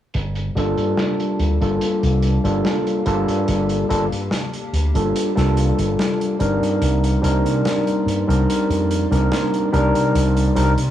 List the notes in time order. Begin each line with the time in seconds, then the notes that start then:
0.14 G1 A#3 G4 F5 A5, closed hi-hat
0.35 closed hi-hat
0.55 G1 G3 A#3 D4 F4 A4, closed hi-hat
0.77 G2, closed hi-hat
0.97 snare, closed hi-hat
1.20 closed hi-hat
1.40 D2, closed hi-hat
1.61 G1 G3 A#3 D4 F4 A4, closed hi-hat
1.81 muted slap bass stroke, closed hi-hat
2.03 C2, closed hi-hat
2.22 closed hi-hat
2.44 G1 G3 A#3 D4 F4 A4, closed hi-hat
2.65 snare, closed hi-hat
2.87 closed hi-hat
3.06 G1 G3 A#3 D4 F4 A4, closed hi-hat
3.28 G2, closed hi-hat
3.48 G1, closed hi-hat
3.69 closed hi-hat
3.89 G1 G3 A#3 D4 F4 A4, closed hi-hat
4.12 G2, closed hi-hat
4.31 snare, closed hi-hat
4.53 closed hi-hat
4.73 D2, closed hi-hat
4.94 G1 G3 A#3 D4 F4 A4, closed hi-hat
5.16 closed hi-hat
5.35 C2 G3 A#3 D4 F4 A4, snare, closed hi-hat
5.57 closed hi-hat
5.79 G1, closed hi-hat
5.99 snare, closed hi-hat
6.21 closed hi-hat
6.39 G1 G3 C4 D4 D#4 A#4, closed hi-hat
6.61 G2, closed hi-hat
6.81 C2 D5 C6, closed hi-hat
7.04 closed hi-hat
7.21 C2 G3 C4 D4 D#4 A#4, closed hi-hat
7.45 C3, closed hi-hat
7.65 snare, closed hi-hat
7.87 closed hi-hat
8.06 G2, closed hi-hat
8.27 C2 G3 C4 D4 D#4 A#4, closed hi-hat
8.48 muted slap bass stroke, closed hi-hat
8.70 F2, closed hi-hat
8.91 closed hi-hat
9.11 C2 G3 C4 D4 D#4 A#4, closed hi-hat
9.32 snare, closed hi-hat
9.54 closed hi-hat
9.72 C2 G3 C4 D4 D#4 A#4, closed hi-hat
9.95 C3, closed hi-hat
10.15 C2, closed hi-hat
10.37 closed hi-hat
10.56 C2 G3 C4 D4 D#4 A#4, closed hi-hat
10.78 C3, closed hi-hat